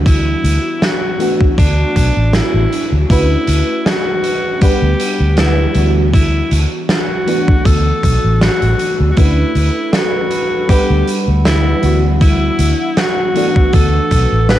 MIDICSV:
0, 0, Header, 1, 7, 480
1, 0, Start_track
1, 0, Key_signature, 2, "major"
1, 0, Tempo, 759494
1, 39, Time_signature, 4, 2, 24, 8
1, 9221, End_track
2, 0, Start_track
2, 0, Title_t, "Ambient pad"
2, 0, Program_c, 0, 92
2, 5796, Note_on_c, 0, 69, 80
2, 5796, Note_on_c, 0, 71, 72
2, 5796, Note_on_c, 0, 83, 72
2, 6748, Note_off_c, 0, 69, 0
2, 6748, Note_off_c, 0, 71, 0
2, 6760, Note_on_c, 0, 55, 83
2, 6760, Note_on_c, 0, 78, 73
2, 7460, Note_off_c, 0, 83, 0
2, 7478, Note_on_c, 0, 88, 79
2, 8423, Note_off_c, 0, 55, 0
2, 8429, Note_off_c, 0, 88, 0
2, 8437, Note_on_c, 0, 88, 82
2, 8438, Note_on_c, 0, 71, 77
2, 9221, Note_off_c, 0, 71, 0
2, 9221, Note_off_c, 0, 78, 0
2, 9221, Note_off_c, 0, 88, 0
2, 9221, End_track
3, 0, Start_track
3, 0, Title_t, "Alto saxophone"
3, 0, Program_c, 1, 65
3, 39, Note_on_c, 1, 64, 94
3, 525, Note_on_c, 1, 66, 86
3, 534, Note_off_c, 1, 64, 0
3, 837, Note_off_c, 1, 66, 0
3, 1000, Note_on_c, 1, 62, 94
3, 1483, Note_on_c, 1, 64, 89
3, 1492, Note_off_c, 1, 62, 0
3, 1851, Note_off_c, 1, 64, 0
3, 1963, Note_on_c, 1, 64, 96
3, 2439, Note_on_c, 1, 66, 90
3, 2449, Note_off_c, 1, 64, 0
3, 2918, Note_off_c, 1, 66, 0
3, 2921, Note_on_c, 1, 67, 104
3, 3398, Note_on_c, 1, 64, 92
3, 3408, Note_off_c, 1, 67, 0
3, 3769, Note_off_c, 1, 64, 0
3, 3878, Note_on_c, 1, 64, 91
3, 4172, Note_off_c, 1, 64, 0
3, 4359, Note_on_c, 1, 66, 91
3, 4837, Note_on_c, 1, 69, 108
3, 4847, Note_off_c, 1, 66, 0
3, 5315, Note_off_c, 1, 69, 0
3, 5319, Note_on_c, 1, 66, 96
3, 5664, Note_off_c, 1, 66, 0
3, 5760, Note_on_c, 1, 66, 71
3, 5798, Note_on_c, 1, 64, 94
3, 5807, Note_off_c, 1, 66, 0
3, 6279, Note_on_c, 1, 66, 89
3, 6288, Note_off_c, 1, 64, 0
3, 6756, Note_off_c, 1, 66, 0
3, 6759, Note_on_c, 1, 67, 103
3, 7052, Note_off_c, 1, 67, 0
3, 7238, Note_on_c, 1, 64, 95
3, 7584, Note_off_c, 1, 64, 0
3, 7720, Note_on_c, 1, 64, 103
3, 8201, Note_on_c, 1, 66, 93
3, 8211, Note_off_c, 1, 64, 0
3, 8679, Note_on_c, 1, 69, 110
3, 8689, Note_off_c, 1, 66, 0
3, 9156, Note_off_c, 1, 69, 0
3, 9160, Note_on_c, 1, 71, 111
3, 9221, Note_off_c, 1, 71, 0
3, 9221, End_track
4, 0, Start_track
4, 0, Title_t, "FM electric piano"
4, 0, Program_c, 2, 5
4, 0, Control_c, 2, 64, 127
4, 0, Note_on_c, 2, 52, 77
4, 0, Note_on_c, 2, 55, 69
4, 0, Note_on_c, 2, 59, 69
4, 0, Note_on_c, 2, 62, 66
4, 0, Note_on_c, 2, 66, 82
4, 710, Note_off_c, 2, 52, 0
4, 712, Note_off_c, 2, 55, 0
4, 715, Note_off_c, 2, 59, 0
4, 717, Note_off_c, 2, 62, 0
4, 720, Note_off_c, 2, 66, 0
4, 747, Note_on_c, 2, 52, 85
4, 753, Note_on_c, 2, 57, 79
4, 757, Note_on_c, 2, 59, 84
4, 762, Note_on_c, 2, 62, 80
4, 766, Note_on_c, 2, 66, 96
4, 768, Control_c, 2, 64, 0
4, 880, Control_c, 2, 64, 127
4, 1909, Note_off_c, 2, 52, 0
4, 1912, Note_off_c, 2, 57, 0
4, 1914, Note_off_c, 2, 59, 0
4, 1916, Note_off_c, 2, 62, 0
4, 1918, Note_off_c, 2, 66, 0
4, 1948, Note_on_c, 2, 57, 76
4, 1954, Note_on_c, 2, 61, 67
4, 1958, Note_on_c, 2, 62, 69
4, 1963, Note_on_c, 2, 66, 71
4, 1968, Control_c, 2, 64, 0
4, 1968, Note_on_c, 2, 71, 84
4, 2062, Control_c, 2, 64, 127
4, 2869, Note_off_c, 2, 57, 0
4, 2873, Note_off_c, 2, 61, 0
4, 2875, Note_off_c, 2, 62, 0
4, 2877, Note_off_c, 2, 66, 0
4, 2879, Note_off_c, 2, 71, 0
4, 2911, Note_on_c, 2, 55, 73
4, 2915, Note_on_c, 2, 59, 70
4, 2921, Note_on_c, 2, 62, 73
4, 2925, Note_on_c, 2, 78, 71
4, 2926, Control_c, 2, 64, 0
4, 2931, Note_on_c, 2, 71, 86
4, 3033, Control_c, 2, 64, 127
4, 3591, Note_off_c, 2, 55, 0
4, 3593, Note_off_c, 2, 59, 0
4, 3596, Note_off_c, 2, 62, 0
4, 3598, Note_off_c, 2, 78, 0
4, 3601, Note_off_c, 2, 71, 0
4, 3630, Note_on_c, 2, 52, 74
4, 3634, Note_on_c, 2, 55, 67
4, 3638, Note_on_c, 2, 59, 72
4, 3643, Note_on_c, 2, 62, 66
4, 3647, Control_c, 2, 64, 0
4, 3649, Note_on_c, 2, 66, 84
4, 3755, Control_c, 2, 64, 127
4, 4550, Note_off_c, 2, 52, 0
4, 4552, Note_off_c, 2, 55, 0
4, 4555, Note_off_c, 2, 59, 0
4, 4557, Note_off_c, 2, 62, 0
4, 4560, Note_off_c, 2, 66, 0
4, 4590, Note_on_c, 2, 52, 87
4, 4594, Note_on_c, 2, 57, 79
4, 4599, Note_on_c, 2, 59, 80
4, 4603, Note_on_c, 2, 62, 80
4, 4605, Control_c, 2, 64, 0
4, 4607, Note_on_c, 2, 66, 96
4, 4721, Control_c, 2, 64, 127
4, 5750, Note_off_c, 2, 52, 0
4, 5753, Note_off_c, 2, 57, 0
4, 5755, Note_off_c, 2, 59, 0
4, 5757, Note_off_c, 2, 62, 0
4, 5759, Note_off_c, 2, 66, 0
4, 5789, Note_on_c, 2, 57, 75
4, 5794, Note_on_c, 2, 61, 68
4, 5799, Note_on_c, 2, 62, 67
4, 5803, Note_on_c, 2, 66, 64
4, 5807, Control_c, 2, 64, 0
4, 5809, Note_on_c, 2, 71, 81
4, 5908, Control_c, 2, 64, 127
4, 6710, Note_off_c, 2, 57, 0
4, 6713, Note_off_c, 2, 61, 0
4, 6715, Note_off_c, 2, 62, 0
4, 6717, Note_off_c, 2, 66, 0
4, 6720, Note_off_c, 2, 71, 0
4, 6748, Note_on_c, 2, 55, 76
4, 6753, Note_on_c, 2, 59, 69
4, 6759, Note_on_c, 2, 62, 73
4, 6763, Note_on_c, 2, 78, 70
4, 6766, Control_c, 2, 64, 0
4, 6768, Note_on_c, 2, 71, 85
4, 6861, Control_c, 2, 64, 127
4, 7429, Note_off_c, 2, 55, 0
4, 7432, Note_off_c, 2, 59, 0
4, 7435, Note_off_c, 2, 62, 0
4, 7437, Note_off_c, 2, 78, 0
4, 7440, Note_off_c, 2, 71, 0
4, 7469, Note_on_c, 2, 52, 76
4, 7474, Note_on_c, 2, 55, 66
4, 7477, Note_on_c, 2, 59, 69
4, 7482, Note_on_c, 2, 62, 66
4, 7486, Note_on_c, 2, 66, 82
4, 7487, Control_c, 2, 64, 0
4, 7589, Control_c, 2, 64, 127
4, 8390, Note_off_c, 2, 52, 0
4, 8392, Note_off_c, 2, 55, 0
4, 8394, Note_off_c, 2, 59, 0
4, 8397, Note_off_c, 2, 62, 0
4, 8399, Note_off_c, 2, 66, 0
4, 8432, Note_on_c, 2, 52, 86
4, 8437, Note_on_c, 2, 57, 83
4, 8441, Note_on_c, 2, 59, 82
4, 8446, Control_c, 2, 64, 0
4, 8447, Note_on_c, 2, 62, 85
4, 8451, Note_on_c, 2, 66, 94
4, 8542, Control_c, 2, 64, 127
4, 9221, Note_off_c, 2, 52, 0
4, 9221, Note_off_c, 2, 57, 0
4, 9221, Note_off_c, 2, 59, 0
4, 9221, Note_off_c, 2, 62, 0
4, 9221, Note_off_c, 2, 66, 0
4, 9221, End_track
5, 0, Start_track
5, 0, Title_t, "Fingered electric bass"
5, 0, Program_c, 3, 33
5, 0, Note_on_c, 3, 38, 72
5, 212, Note_off_c, 3, 38, 0
5, 276, Note_on_c, 3, 38, 77
5, 359, Note_off_c, 3, 38, 0
5, 999, Note_on_c, 3, 38, 89
5, 1157, Note_off_c, 3, 38, 0
5, 1239, Note_on_c, 3, 35, 82
5, 1321, Note_off_c, 3, 35, 0
5, 1370, Note_on_c, 3, 33, 89
5, 1513, Note_off_c, 3, 33, 0
5, 1606, Note_on_c, 3, 33, 79
5, 1676, Note_off_c, 3, 33, 0
5, 1847, Note_on_c, 3, 38, 98
5, 1917, Note_off_c, 3, 38, 0
5, 1958, Note_on_c, 3, 38, 91
5, 2117, Note_off_c, 3, 38, 0
5, 2198, Note_on_c, 3, 38, 86
5, 2280, Note_off_c, 3, 38, 0
5, 3049, Note_on_c, 3, 38, 81
5, 3118, Note_off_c, 3, 38, 0
5, 3288, Note_on_c, 3, 38, 87
5, 3573, Note_off_c, 3, 38, 0
5, 3637, Note_on_c, 3, 38, 79
5, 4053, Note_off_c, 3, 38, 0
5, 4119, Note_on_c, 3, 38, 79
5, 4201, Note_off_c, 3, 38, 0
5, 4838, Note_on_c, 3, 38, 88
5, 4997, Note_off_c, 3, 38, 0
5, 5078, Note_on_c, 3, 35, 88
5, 5160, Note_off_c, 3, 35, 0
5, 5210, Note_on_c, 3, 33, 87
5, 5353, Note_off_c, 3, 33, 0
5, 5450, Note_on_c, 3, 33, 78
5, 5518, Note_off_c, 3, 33, 0
5, 5690, Note_on_c, 3, 38, 100
5, 5758, Note_off_c, 3, 38, 0
5, 5799, Note_on_c, 3, 38, 94
5, 5957, Note_off_c, 3, 38, 0
5, 6039, Note_on_c, 3, 38, 84
5, 6121, Note_off_c, 3, 38, 0
5, 6891, Note_on_c, 3, 38, 81
5, 6959, Note_off_c, 3, 38, 0
5, 7129, Note_on_c, 3, 38, 82
5, 7413, Note_off_c, 3, 38, 0
5, 7478, Note_on_c, 3, 38, 74
5, 7893, Note_off_c, 3, 38, 0
5, 7958, Note_on_c, 3, 38, 78
5, 8040, Note_off_c, 3, 38, 0
5, 8680, Note_on_c, 3, 38, 87
5, 8838, Note_off_c, 3, 38, 0
5, 8919, Note_on_c, 3, 35, 87
5, 9001, Note_off_c, 3, 35, 0
5, 9052, Note_on_c, 3, 33, 84
5, 9193, Note_off_c, 3, 33, 0
5, 9221, End_track
6, 0, Start_track
6, 0, Title_t, "Muted fingered electric bass strokes"
6, 2920, Note_on_c, 9, 29, 41
6, 2983, Note_off_c, 9, 29, 0
6, 6758, Note_on_c, 9, 29, 41
6, 6821, Note_off_c, 9, 29, 0
6, 9221, End_track
7, 0, Start_track
7, 0, Title_t, "Drums"
7, 37, Note_on_c, 9, 36, 117
7, 39, Note_on_c, 9, 42, 79
7, 100, Note_off_c, 9, 36, 0
7, 102, Note_off_c, 9, 42, 0
7, 280, Note_on_c, 9, 42, 68
7, 343, Note_off_c, 9, 42, 0
7, 518, Note_on_c, 9, 38, 107
7, 520, Note_on_c, 9, 42, 90
7, 581, Note_off_c, 9, 38, 0
7, 584, Note_off_c, 9, 42, 0
7, 758, Note_on_c, 9, 42, 67
7, 821, Note_off_c, 9, 42, 0
7, 888, Note_on_c, 9, 36, 97
7, 951, Note_off_c, 9, 36, 0
7, 998, Note_on_c, 9, 36, 118
7, 999, Note_on_c, 9, 42, 81
7, 1061, Note_off_c, 9, 36, 0
7, 1063, Note_off_c, 9, 42, 0
7, 1238, Note_on_c, 9, 42, 69
7, 1239, Note_on_c, 9, 36, 59
7, 1302, Note_off_c, 9, 36, 0
7, 1302, Note_off_c, 9, 42, 0
7, 1475, Note_on_c, 9, 38, 103
7, 1477, Note_on_c, 9, 42, 95
7, 1538, Note_off_c, 9, 38, 0
7, 1540, Note_off_c, 9, 42, 0
7, 1722, Note_on_c, 9, 42, 64
7, 1785, Note_off_c, 9, 42, 0
7, 1959, Note_on_c, 9, 36, 118
7, 1959, Note_on_c, 9, 42, 82
7, 2022, Note_off_c, 9, 36, 0
7, 2023, Note_off_c, 9, 42, 0
7, 2194, Note_on_c, 9, 42, 78
7, 2258, Note_off_c, 9, 42, 0
7, 2439, Note_on_c, 9, 38, 126
7, 2439, Note_on_c, 9, 42, 97
7, 2502, Note_off_c, 9, 38, 0
7, 2502, Note_off_c, 9, 42, 0
7, 2678, Note_on_c, 9, 42, 74
7, 2741, Note_off_c, 9, 42, 0
7, 2917, Note_on_c, 9, 42, 78
7, 2919, Note_on_c, 9, 36, 125
7, 2980, Note_off_c, 9, 42, 0
7, 2982, Note_off_c, 9, 36, 0
7, 3159, Note_on_c, 9, 42, 79
7, 3222, Note_off_c, 9, 42, 0
7, 3393, Note_on_c, 9, 42, 79
7, 3399, Note_on_c, 9, 38, 127
7, 3457, Note_off_c, 9, 42, 0
7, 3462, Note_off_c, 9, 38, 0
7, 3632, Note_on_c, 9, 42, 68
7, 3695, Note_off_c, 9, 42, 0
7, 3878, Note_on_c, 9, 36, 115
7, 3881, Note_on_c, 9, 42, 72
7, 3942, Note_off_c, 9, 36, 0
7, 3945, Note_off_c, 9, 42, 0
7, 4117, Note_on_c, 9, 42, 71
7, 4180, Note_off_c, 9, 42, 0
7, 4355, Note_on_c, 9, 38, 118
7, 4358, Note_on_c, 9, 42, 75
7, 4418, Note_off_c, 9, 38, 0
7, 4421, Note_off_c, 9, 42, 0
7, 4598, Note_on_c, 9, 42, 68
7, 4662, Note_off_c, 9, 42, 0
7, 4728, Note_on_c, 9, 36, 105
7, 4791, Note_off_c, 9, 36, 0
7, 4838, Note_on_c, 9, 36, 124
7, 4838, Note_on_c, 9, 42, 81
7, 4901, Note_off_c, 9, 36, 0
7, 4901, Note_off_c, 9, 42, 0
7, 5077, Note_on_c, 9, 36, 63
7, 5079, Note_on_c, 9, 42, 66
7, 5141, Note_off_c, 9, 36, 0
7, 5142, Note_off_c, 9, 42, 0
7, 5317, Note_on_c, 9, 38, 120
7, 5319, Note_on_c, 9, 42, 89
7, 5381, Note_off_c, 9, 38, 0
7, 5382, Note_off_c, 9, 42, 0
7, 5447, Note_on_c, 9, 42, 48
7, 5510, Note_off_c, 9, 42, 0
7, 5556, Note_on_c, 9, 42, 65
7, 5619, Note_off_c, 9, 42, 0
7, 5794, Note_on_c, 9, 42, 72
7, 5798, Note_on_c, 9, 36, 117
7, 5857, Note_off_c, 9, 42, 0
7, 5861, Note_off_c, 9, 36, 0
7, 6038, Note_on_c, 9, 42, 64
7, 6101, Note_off_c, 9, 42, 0
7, 6276, Note_on_c, 9, 38, 122
7, 6277, Note_on_c, 9, 42, 89
7, 6339, Note_off_c, 9, 38, 0
7, 6340, Note_off_c, 9, 42, 0
7, 6514, Note_on_c, 9, 42, 71
7, 6577, Note_off_c, 9, 42, 0
7, 6756, Note_on_c, 9, 42, 81
7, 6757, Note_on_c, 9, 36, 117
7, 6820, Note_off_c, 9, 36, 0
7, 6820, Note_off_c, 9, 42, 0
7, 7000, Note_on_c, 9, 42, 69
7, 7063, Note_off_c, 9, 42, 0
7, 7239, Note_on_c, 9, 38, 121
7, 7239, Note_on_c, 9, 42, 90
7, 7302, Note_off_c, 9, 42, 0
7, 7303, Note_off_c, 9, 38, 0
7, 7475, Note_on_c, 9, 42, 65
7, 7538, Note_off_c, 9, 42, 0
7, 7716, Note_on_c, 9, 42, 73
7, 7717, Note_on_c, 9, 36, 110
7, 7780, Note_off_c, 9, 36, 0
7, 7780, Note_off_c, 9, 42, 0
7, 7956, Note_on_c, 9, 42, 67
7, 8019, Note_off_c, 9, 42, 0
7, 8197, Note_on_c, 9, 42, 85
7, 8198, Note_on_c, 9, 38, 115
7, 8260, Note_off_c, 9, 42, 0
7, 8262, Note_off_c, 9, 38, 0
7, 8440, Note_on_c, 9, 42, 73
7, 8503, Note_off_c, 9, 42, 0
7, 8568, Note_on_c, 9, 36, 101
7, 8632, Note_off_c, 9, 36, 0
7, 8675, Note_on_c, 9, 42, 70
7, 8678, Note_on_c, 9, 36, 110
7, 8738, Note_off_c, 9, 42, 0
7, 8742, Note_off_c, 9, 36, 0
7, 8916, Note_on_c, 9, 42, 61
7, 8918, Note_on_c, 9, 36, 58
7, 8979, Note_off_c, 9, 42, 0
7, 8982, Note_off_c, 9, 36, 0
7, 9158, Note_on_c, 9, 38, 116
7, 9160, Note_on_c, 9, 42, 75
7, 9221, Note_off_c, 9, 38, 0
7, 9221, Note_off_c, 9, 42, 0
7, 9221, End_track
0, 0, End_of_file